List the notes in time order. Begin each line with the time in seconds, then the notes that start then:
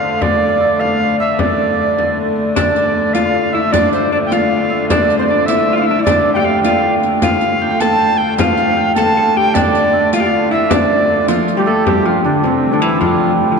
Already playing: D3 A3 C5 D5 F5
0.03 frame drum
0.21 D5, frame drum
0.35 D5
0.49 D5
0.60 E5
0.79 F5, frame drum
1.00 F5
1.19 E5, frame drum
1.39 D5, frame drum
1.59 frame drum
1.79 frame drum
1.99 frame drum
2.37 frame drum
2.55 D3 A3 D4 D5, riq, frame drum
2.76 riq
3.13 F4 F5, riq, frame drum
3.34 F5
3.52 E4 E5, frame drum
3.72 D4 D5, riq, frame drum
3.92 C5, riq
4.12 D4 D5
4.26 G5
4.31 F4 F5, riq, frame drum
4.70 E5, frame drum
4.89 D4 D5, riq, frame drum
5.10 riq
5.18 C4 C5
5.26 D4 D5
5.46 E4 E5, riq, frame drum
5.73 F4 F5
5.77 F5
5.82 E4 E5
5.88 D4, frame drum
5.99 E4
6.03 D4 D5, riq, frame drum
6.33 G4 F5 G5
6.37 G5
6.42 G4 F5
6.46 frame drum
6.63 F4 F5, riq, frame drum
6.84 frame drum
7.03 riq
7.22 D3 A3 F4 F5, riq, frame drum
7.41 riq
7.62 G5
7.67 G5
7.71 G5
7.80 A4 A5, riq, frame drum
8.17 G5, frame drum
8.37 F4 F5, riq, frame drum
8.57 riq
8.77 G5
8.95 A4 A5, riq, frame drum
9.17 A4
9.37 G4 G5, frame drum
9.54 D4 D5, riq, frame drum
9.75 riq
9.93 E5
10.12 F4 F5, riq, frame drum
10.20 G4
10.26 F4
10.51 E4 E5, frame drum
10.70 D4 D5, riq, frame drum
11.09 frame drum
11.28 F3 F4, riq, frame drum
11.48 riq, frame drum
11.56 G3 G4
11.65 A3 A4
11.85 D3 G3 A3 G4, frame drum
12.05 F3 F4, frame drum
12.24 D3 D4
12.44 C3 C4, frame drum
12.71 D3 D4
12.80 E3 E4, frame drum
12.95 G4
13.00 F3 F4, frame drum
13.20 frame drum
13.52 F3